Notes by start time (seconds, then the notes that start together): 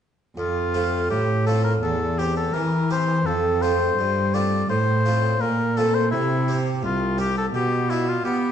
0.37 F2 F4
0.74 A3 C4 F4
1.10 A2 G4
1.46 A3 C4 F4 A4
1.64 A#4
1.82 E2 A4
2.18 C4 G4
2.37 A4
2.53 E3 A#4
2.91 C4 G4 C5
3.26 F2 A4
3.62 A3 C4 F4 C5
3.98 G2
4.34 A3 C4 F4 D5
4.70 A2 C5
5.05 A3 C4 F4
5.41 A#2 A#4
5.77 A3 C4 F4 A4
5.95 C5
6.11 C3 E4
6.48 C4 G4
6.83 C2 F4
7.18 C4 G4
7.38 A4
7.54 B2 G4
7.90 D4 E4 F4
8.08 F4
8.25 B3 G4